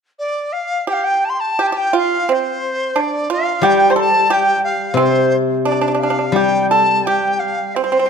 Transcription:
0.19 D5
0.52 F5
0.87 G4 G5
0.93 F5
1.04 G5
1.25 A5
1.29 C6
1.40 A5
1.59 G4 G5
1.67 A5
1.72 G4
1.77 G5
1.93 F4
1.98 F5
2.29 C4 C5
2.96 D4
3.00 D5
3.30 F4 F5
3.62 G3 G4 G5
3.90 C5 C6
3.96 A4 A5
4.30 G4 G5
4.64 F5
4.94 C3 C4 C5
5.65 D4 D5
5.72 D4
5.81 D4
5.88 D4
5.95 D4
5.99 F5
6.03 D4
6.10 D4
6.19 D4
6.32 G3 G4 G5
6.69 A4 A5
7.05 G4 G5
7.39 F5
7.75 C4 C5
7.84 C4
7.92 C4
7.99 C4
8.06 C4

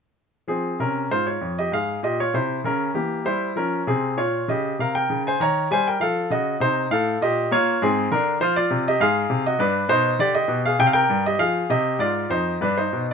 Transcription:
0.48 F3 C4 G#4
0.80 C3 C#4 A#4
1.11 G#2 F4 C5
1.27 F4 C#5
1.41 F2
1.59 G4 D#5
1.72 G#2 G#4 F5
2.03 A#2 G4 D#5
2.20 F4 C#5
2.34 C3 E4 C5
2.64 C#3 C#4 A#4
2.94 E3 A#3 G4
3.25 G3 E4 C5
3.56 F3 C#4 A#4
3.87 C3 C4 G#4
4.17 A#2 F4 C#5
4.48 C#3 G4 D#5
4.79 C3 A#4 F5
4.95 A#4 G5
5.10 C#3
5.27 C5 G#5
5.40 D#3 C#5 A#5
5.71 G3 C5 G#5
5.88 A#4 G5
6.00 F3 A4 F5
6.30 C#3 F#4 D#5
6.60 C3 D#4 C5
6.91 A2 A4 F5
7.21 A#2 G4 D#5
7.51 A#3 F4 C#5
7.82 G#2 C4 G#4
8.11 D3 D4 A#4
8.40 F3 F4 C5
8.56 F4 D5
8.71 C3
8.88 G4 D#5
9.00 G#2 G#4 F5
9.30 C3
9.46 F#4 D#5
9.59 G2 D4 B4
9.89 B2 D#4 C5
10.19 D3 G4 D5
10.35 G4 D#5
10.48 B2
10.65 G#4 F5
10.79 C3 G5
10.87 F5
10.93 A#4 G5
11.10 G2
11.26 G4 D#5
11.39 F3 G#4 F5
11.70 C3 G4 D#5
11.99 G#2 F4 D5
12.30 F2 D#4 C5
12.61 G2 D4 B4
12.77 D#4 C5
12.93 B2

